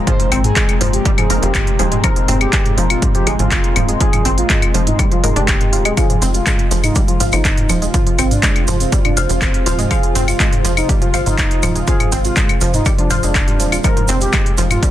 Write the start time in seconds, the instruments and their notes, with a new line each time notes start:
Already playing: analog synth pad A#2 G#3 C4, ambient pad G#3 D#5 A#5 C6
0.07 synth pluck F3 F4, synth stab G#3 D#4 G#4, analog synth lead C5, kick, closed hi-hat, mid tom
0.20 synth pluck F3 F4, closed hi-hat
0.32 analog synth bass G#1, synth pluck C4 C5, open hi-hat, claves
0.44 analog synth lead G#4, closed hi-hat, mid tom
0.56 synth pluck G#3 G#4, kick, clap, closed hi-hat
0.69 closed hi-hat, claves
0.81 analog synth bass F1, synth pluck F3 F4, mid tom, open hi-hat
0.93 analog synth lead G4, closed hi-hat
1.05 synth pluck G3 G4, kick, closed hi-hat
1.18 synth pluck F3 F4, analog synth lead G#4, closed hi-hat, mid tom, claves
1.30 analog synth bass F1, synth pluck F3 F4, synth stab G#3 D#4 A#4, open hi-hat
1.42 analog synth bass F1, synth pluck F3 F4, analog synth lead G4, closed hi-hat
1.55 kick, clap, closed hi-hat, mid tom, claves
1.67 closed hi-hat
1.79 analog synth bass D#1, synth pluck F3 F4, synth stab G#3 D#4 G#4, open hi-hat
1.92 synth pluck G#3 G#4, closed hi-hat, mid tom
2.04 synth pluck F3 F4, synth stab G#3 D#4 A#4, analog synth lead A#4, kick, closed hi-hat, claves
2.16 synth pluck F3 F4, closed hi-hat
2.28 analog synth bass F1, synth pluck C4 C5, mid tom, open hi-hat
2.41 analog synth lead G4, closed hi-hat, claves
2.53 synth pluck G#3 G#4, kick, clap, closed hi-hat
2.66 closed hi-hat, mid tom
2.77 analog synth bass F1, synth pluck F3 F4, open hi-hat
2.90 analog synth lead F4, closed hi-hat, claves
3.02 synth pluck G3 G4, kick, closed hi-hat, mid tom
3.15 synth pluck F3 F4, analog synth lead G4, closed hi-hat
3.27 analog synth bass G1, synth pluck F3 F4, synth stab G#3 D#4 G#4, open hi-hat, claves
3.39 analog synth bass G1, synth pluck F3 F4, analog synth lead F4, closed hi-hat, mid tom
3.51 kick, clap, closed hi-hat
3.64 closed hi-hat
3.76 analog synth bass D#1, synth pluck F3 F4, mid tom, open hi-hat, claves
3.89 synth pluck G#3 G#4, closed hi-hat
4.00 synth pluck F3 F4, synth stab G#3 D#4 G#4, analog synth lead G#4, kick, closed hi-hat
4.13 synth pluck F3 F4, closed hi-hat, mid tom, claves
4.25 analog synth bass G#1, synth pluck C4 C5, open hi-hat
4.38 analog synth lead F4, closed hi-hat
4.50 synth pluck G#3 G#4, kick, clap, closed hi-hat, mid tom
4.62 closed hi-hat, claves
4.74 analog synth bass F1, synth pluck F3 F4, open hi-hat
4.87 analog synth lead D#4, closed hi-hat, mid tom
4.99 synth pluck G3 G4, kick, closed hi-hat, claves
5.12 synth pluck F3 F4, analog synth lead F4, closed hi-hat
5.24 analog synth bass F1, synth stab G#3 D#4 A#4, synth pluck G#3 G#4, mid tom, open hi-hat
5.36 analog synth bass F1, synth pluck D4 D5, analog synth lead G4, closed hi-hat
5.48 kick, clap, closed hi-hat, claves
5.61 closed hi-hat, mid tom
5.73 analog synth bass D#1, synth pluck F4 F5, open hi-hat
5.85 synth pluck G#3 G#4, closed hi-hat, claves
5.97 analog synth pad C3 F4, synth pluck F3 F4, synth stab F4 C5 F5, ambient pad F4, analog synth lead G#4, kick, closed hi-hat, claves, shaker
6.10 synth pluck F3 F4, closed hi-hat, mid tom
6.20 analog synth bass F1, synth pluck C4 C5, ambient pad C5, open hi-hat, shaker
6.34 analog synth lead F4, closed hi-hat, shaker
6.47 synth pluck G#3 G#4, kick, clap, closed hi-hat, mid tom, claves, shaker
6.59 closed hi-hat
6.71 analog synth bass F1, synth pluck F3 F4, open hi-hat, shaker
6.84 analog synth lead D#4, closed hi-hat, mid tom, claves, shaker
6.92 synth pluck G3 G4, ambient pad F5, kick, closed hi-hat, shaker
7.08 synth pluck F3 F4, analog synth lead F4, closed hi-hat
7.20 analog synth bass G1, synth pluck F3 F4, synth stab F4 C5 F5, mid tom, open hi-hat, shaker
7.32 analog synth bass G1, synth pluck F3 F4, analog synth lead D#4, closed hi-hat, claves, shaker
7.45 kick, clap, closed hi-hat, shaker
7.57 closed hi-hat, mid tom
7.69 analog synth bass D#1, synth pluck F3 F4, open hi-hat, claves, shaker
7.82 synth pluck G#3 G#4, closed hi-hat, shaker
7.94 synth pluck F3 F4, analog synth lead F4, synth stab F4 C5 F5, kick, closed hi-hat, mid tom, shaker
8.07 synth pluck F3 F4, closed hi-hat
8.19 analog synth bass G#1, synth pluck C4 C5, open hi-hat, claves, shaker
8.31 analog synth lead D4, closed hi-hat, mid tom, shaker
8.43 synth pluck G#3 G#4, kick, clap, closed hi-hat, shaker
8.56 closed hi-hat, claves
8.68 analog synth bass F1, synth pluck F3 F4, mid tom, open hi-hat, shaker
8.80 analog synth lead C4, closed hi-hat, shaker
8.92 synth pluck G3 G4, kick, closed hi-hat, shaker
9.05 synth pluck F3 F4, analog synth lead D4, closed hi-hat, mid tom, claves
9.17 analog synth bass F1, synth pluck F3 F4, synth stab F4 C5 F5, open hi-hat, shaker
9.29 analog synth bass F1, synth pluck F3 F4, analog synth lead C4, closed hi-hat, shaker
9.41 kick, clap, closed hi-hat, mid tom, claves, shaker
9.54 closed hi-hat
9.66 analog synth bass D#1, synth pluck F3 F4, synth stab F4 C5 F5, open hi-hat, shaker
9.79 synth pluck G#3 G#4, closed hi-hat, mid tom, shaker
9.91 synth pluck F3 F4, synth stab F4 C5 F5, analog synth lead G#4, kick, closed hi-hat, claves, shaker
10.03 synth pluck F3 F4, closed hi-hat
10.15 analog synth bass F1, synth pluck C4 C5, mid tom, open hi-hat, shaker
10.28 analog synth lead F4, closed hi-hat, claves, shaker
10.40 synth pluck G#3 G#4, kick, clap, closed hi-hat, shaker
10.53 closed hi-hat, mid tom
10.65 analog synth bass F1, synth pluck F3 F4, open hi-hat, shaker
10.77 analog synth lead D#4, closed hi-hat, claves, shaker
10.89 synth pluck G3 G4, kick, closed hi-hat, mid tom, shaker
11.02 synth pluck F3 F4, analog synth lead F4, closed hi-hat
11.14 analog synth bass G1, synth pluck F3 F4, synth stab F4 C5 F5, open hi-hat, claves, shaker
11.26 analog synth bass G1, synth pluck F3 F4, analog synth lead D#4, closed hi-hat, mid tom, shaker
11.38 kick, clap, closed hi-hat, shaker
11.51 closed hi-hat
11.63 analog synth bass D#1, synth pluck F3 F4, mid tom, open hi-hat, claves, shaker
11.75 synth pluck G#3 G#4, closed hi-hat, shaker
11.87 synth pluck F3 F4, synth stab F4 C5 F5, analog synth lead G#4, kick, closed hi-hat, shaker
12.00 synth pluck F3 F4, closed hi-hat, mid tom, claves
12.12 analog synth bass G#1, synth pluck C4 C5, open hi-hat, shaker
12.24 analog synth lead F4, closed hi-hat, shaker
12.36 synth pluck G#3 G#4, kick, clap, closed hi-hat, mid tom, shaker
12.49 closed hi-hat, claves
12.61 analog synth bass F1, synth pluck F3 F4, open hi-hat, shaker
12.74 analog synth lead D#4, closed hi-hat, mid tom, shaker
12.85 synth pluck G3 G4, kick, closed hi-hat, claves, shaker
12.98 synth pluck F3 F4, analog synth lead D4, closed hi-hat
13.10 analog synth bass F1, synth pluck F3 F4, synth stab F4 C5 F5, mid tom, open hi-hat, shaker
13.23 analog synth bass F1, synth pluck G#3 G#4, analog synth lead D4, closed hi-hat, shaker
13.35 kick, clap, closed hi-hat, claves, shaker
13.48 synth pluck G3 G4, closed hi-hat, mid tom
13.60 analog synth bass D#1, synth pluck F3 F4, open hi-hat, shaker
13.72 synth pluck F4 F5, closed hi-hat, claves, shaker
13.84 analog synth pad A#2 G#3 C4, synth pluck F3 F4, synth stab G#3 D#4 A#4, ambient pad G#3, analog synth lead A#4, kick, closed hi-hat, claves, shaker
13.97 synth pluck F3 F4, closed hi-hat, mid tom
14.08 analog synth bass F1, synth pluck C4 C5, open hi-hat, shaker
14.21 analog synth lead G4, ambient pad A#5, closed hi-hat, shaker
14.33 synth pluck G#3 G#4, ambient pad C6, kick, clap, closed hi-hat, mid tom, claves, shaker
14.38 ambient pad D#5
14.46 closed hi-hat
14.58 analog synth bass F1, synth pluck F3 F4, open hi-hat, shaker
14.71 analog synth lead F4, closed hi-hat, mid tom, claves, shaker
14.83 synth pluck G3 G4, kick, closed hi-hat, shaker